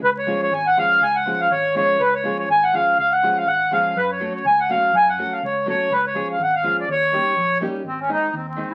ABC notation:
X:1
M:2/4
L:1/16
Q:"Swing 16ths" 1/4=123
K:none
V:1 name="Accordion"
B ^c2 c ^g ^f ^e2 | ^g ^f2 ^e ^c2 c2 | B ^c2 c ^g ^f ^e2 | ^e ^f2 e f2 e2 |
B ^c2 c ^g ^f ^e2 | ^g ^f2 ^e ^c2 c2 | B ^c2 ^e ^f e2 d | ^c6 z2 |
^B, ^C ^D2 B, B,2 E |]
V:2 name="Nylon-string guitar"
z2 [^E,^G,^C^E^G]2 z2 [E,G,CEG]2 | z2 [^E,^G,^C^E^G]2 z2 [E,G,CEG]2 | z2 [^E,^G,^C^E^G]2 z2 [E,G,CEG]2 | z2 [^E,^G,^C^E^G]2 z2 [E,G,CEG]2 |
z2 [^F,A,^C^FA]2 z2 [F,A,CFA]2 | z2 [^F,A,^C^FA]2 z2 [F,A,CFA]2 | z2 [^E,^G,^C^E^G]2 z2 [E,G,CEG]2 | z2 [G,^A,^C^DG]2 z2 [G,A,CDG]2 |
z2 [^D,^G,^B,^D]2 z2 [D,G,B,D]2 |]
V:3 name="Fingered electric bass" clef=bass
^C,,4 ^G,,,4 | ^C,,4 ^G,,,4 | ^C,,4 ^G,,,4 | ^C,,4 ^G,,,4 |
^F,,4 ^C,,4 | ^F,,4 ^C,,4 | ^C,,4 ^G,,,4 | ^D,,4 ^A,,,4 |
^G,,,4 ^D,,4 |]